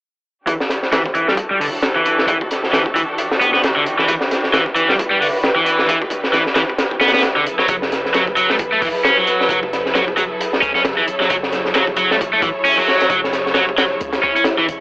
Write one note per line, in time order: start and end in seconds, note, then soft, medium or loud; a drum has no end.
0.46 7.42 E3 medium
0.46 0.52 E3 medium
0.46 7.42 D4 medium
0.46 7.42 F#4 medium
0.46 7.42 G4 medium
0.46 4.05 A4 medium
0.46 kick loud
0.46 closed hi-hat medium
0.60 snare soft
0.69 snare soft
0.69 closed hi-hat medium
0.83 snare soft
0.92 1.01 E3 medium
0.92 snare loud
0.92 closed hi-hat medium
1.06 kick medium
1.15 1.27 E3 medium
1.15 closed hi-hat medium
1.28 1.32 G3 medium
1.28 snare soft
1.37 kick medium
1.37 closed hi-hat medium
1.51 1.57 G3 medium
1.60 1.65 D3 medium
1.60 open hi-hat medium
1.82 snare loud
1.82 closed hi-hat medium
1.96 2.27 E3 medium
2.06 closed hi-hat medium
2.19 snare soft
2.28 2.36 E3 medium
2.28 kick loud
2.28 closed hi-hat medium
2.41 kick medium
2.51 snare soft
2.51 closed hi-hat medium
2.64 snare soft
2.73 2.81 E3 medium
2.73 snare loud
2.73 closed hi-hat medium
2.86 kick medium
2.95 3.00 E3 medium
2.95 kick medium
2.95 closed hi-hat medium
3.18 closed hi-hat medium
3.31 snare medium
3.41 3.49 B3 medium
3.41 closed hi-hat medium
3.54 3.60 B3 medium
3.54 snare soft
3.63 snare loud
3.63 closed hi-hat medium
3.76 3.82 D3 medium
3.86 closed hi-hat medium
3.99 4.05 E3 medium
3.99 snare soft
4.08 4.13 E3 medium
4.08 7.43 B4 medium
4.08 kick medium
4.08 closed hi-hat medium
4.21 snare soft
4.31 snare soft
4.31 closed hi-hat medium
4.44 snare soft
4.54 4.62 E3 medium
4.54 snare loud
4.54 closed hi-hat medium
4.66 kick medium
4.76 4.87 E3 medium
4.76 closed hi-hat medium
4.89 4.93 G3 medium
4.89 snare soft
4.99 kick loud
4.99 closed hi-hat medium
5.11 5.17 G3 medium
5.21 5.26 D3 medium
5.21 open hi-hat medium
5.44 snare loud
5.44 closed hi-hat medium
5.56 5.87 E3 medium
5.66 closed hi-hat medium
5.79 snare soft
5.88 5.97 E3 medium
5.88 kick loud
5.88 closed hi-hat medium
6.02 kick medium
6.10 kick medium
6.10 closed hi-hat medium
6.24 snare soft
6.33 6.42 E3 medium
6.33 snare soft
6.33 closed hi-hat medium
6.46 snare soft
6.55 6.61 E3 medium
6.55 snare loud
6.55 closed hi-hat medium
6.70 kick medium
6.78 snare loud
6.78 closed hi-hat medium
6.91 kick medium
7.01 7.10 B3 medium
7.01 snare medium
7.01 closed hi-hat medium
7.08 snare medium
7.08 closed hi-hat medium
7.14 7.21 B3 medium
7.14 snare medium
7.14 closed hi-hat medium
7.18 snare medium
7.18 closed hi-hat medium
7.23 snare loud
7.23 closed hi-hat medium
7.37 7.43 D3 medium
7.46 14.80 F#3 medium
7.46 14.80 E4 medium
7.46 14.80 G#4 medium
7.46 14.80 A4 medium
7.46 11.04 B4 medium
7.46 closed hi-hat medium
7.59 7.66 F#3 medium
7.59 snare soft
7.68 8.54 F#1 medium
7.68 7.74 F#3 medium
7.68 kick medium
7.68 closed hi-hat medium
7.82 snare soft
7.92 snare soft
7.92 closed hi-hat medium
8.06 snare soft
8.14 8.23 F#3 medium
8.14 snare loud
8.14 closed hi-hat medium
8.27 kick medium
8.37 8.48 F#3 medium
8.37 closed hi-hat medium
8.50 8.54 A3 medium
8.50 snare soft
8.59 8.75 E1 medium
8.59 kick loud
8.59 closed hi-hat medium
8.72 8.79 A3 medium
8.82 8.90 A1 loud
8.82 8.87 E3 medium
8.82 open hi-hat medium
9.05 9.17 C#4 medium
9.05 snare loud
9.05 closed hi-hat medium
9.18 9.49 F#3 medium
9.27 closed hi-hat medium
9.41 snare soft
9.49 10.34 F#1 medium
9.49 9.58 F#3 medium
9.49 kick loud
9.49 closed hi-hat medium
9.63 kick medium
9.73 snare soft
9.73 closed hi-hat medium
9.86 snare soft
9.95 10.03 F#3 medium
9.95 snare loud
9.95 closed hi-hat medium
10.08 kick medium
10.17 10.22 F#3 medium
10.17 kick medium
10.17 closed hi-hat medium
10.41 closed hi-hat medium
10.53 snare soft
10.62 10.75 C#2 medium
10.62 10.71 C#4 medium
10.62 closed hi-hat medium
10.75 10.83 F#1 soft
10.75 10.81 C#4 medium
10.75 snare soft
10.85 10.93 F#1 medium
10.85 snare loud
10.85 closed hi-hat medium
10.98 11.04 E3 medium
11.08 14.80 C#5 medium
11.08 closed hi-hat medium
11.20 11.27 F#3 medium
11.20 snare soft
11.30 12.15 F#1 medium
11.30 11.35 F#3 medium
11.30 kick loud
11.30 closed hi-hat medium
11.43 snare soft
11.52 snare soft
11.52 closed hi-hat medium
11.65 snare soft
11.74 11.84 F#3 medium
11.74 snare loud
11.74 closed hi-hat medium
11.87 kick medium
11.96 12.09 F#3 medium
11.96 closed hi-hat medium
12.11 12.15 A3 medium
12.11 snare soft
12.21 12.36 E1 medium
12.21 kick loud
12.21 closed hi-hat medium
12.33 12.40 A3 medium
12.42 12.51 A1 loud
12.42 12.48 E3 medium
12.42 kick medium
12.42 closed hi-hat medium
12.65 12.77 C#4 medium
12.65 open hi-hat medium
12.78 13.09 F#3 medium
12.88 snare soft
13.01 snare soft
13.01 closed hi-hat medium
13.10 13.95 F#1 loud
13.10 13.19 F#3 medium
13.10 kick medium
13.10 closed hi-hat medium
13.24 snare soft
13.33 snare soft
13.33 closed hi-hat medium
13.46 snare soft
13.54 13.64 F#3 medium
13.54 snare loud
13.54 closed hi-hat medium
13.69 kick medium
13.78 13.83 F#3 medium
13.78 snare loud
13.78 closed hi-hat medium
14.01 14.17 C#2 medium
14.01 closed hi-hat medium
14.01 swell medium
14.13 snare loud
14.13 closed hi-hat medium
14.23 14.32 C#2 medium
14.23 14.32 C#4 medium
14.36 14.42 C#4 medium
14.36 closed hi-hat medium
14.44 snare loud
14.44 closed hi-hat medium
14.58 14.65 E3 medium
14.68 14.80 E1 medium
14.68 closed hi-hat medium